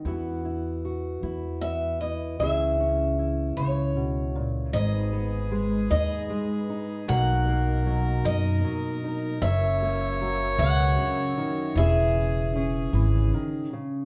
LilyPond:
<<
  \new Staff \with { instrumentName = "Steel-string acoustic guitar" } { \time 6/8 \key gis \minor \tempo 4. = 51 r2 e''8 dis''8 | e''4. cis''4. | dis''4. dis''4. | fis''4. dis''4. |
e''4. fis''4. | e''2 r4 | }
  \new Staff \with { instrumentName = "Fiddle" } { \time 6/8 \key gis \minor r2. | r2. | gis'2. | ais'2. |
cis''2. | gis'4 gis'4. r8 | }
  \new Staff \with { instrumentName = "Tonewheel organ" } { \time 6/8 \key gis \minor r2. | r2. | <gis dis' b'>2. | <b, ais>2. |
<fis ais' e''>2. | <cis cis'>2. | }
  \new Staff \with { instrumentName = "Steel-string acoustic guitar" } { \time 6/8 \key gis \minor << { <b e' fis'>8 e'8 fis'8 e'4 e'8 | <e cis' e' gis'>8 cis'8 e'2 | r8 b4 dis'4 dis'8 | <fis ais dis' ais'>8 ais4 dis'4 dis'8 |
r8 ais2~ ais8 | <cis' e' gis'>2. | } \\ { e2 b4 | cis4. cis8 b,8 ais,8 | gis,4 gis4 gis4 | b,4 fis4 fis4 |
fis,4 fis8 b,8 cis8 dis8 | e4 cis'8 e8 dis8 cis8 | } >> }
  \new Staff \with { instrumentName = "Upright bass" } { \clef bass \time 6/8 \key gis \minor e,4. e,4. | cis,4. cis,4. | gis,,4. dis,8 r4 | b,,4. fis,8 r4 |
fis,,4. cis,8 r4 | e,,4. gis,,8 r4 | }
>>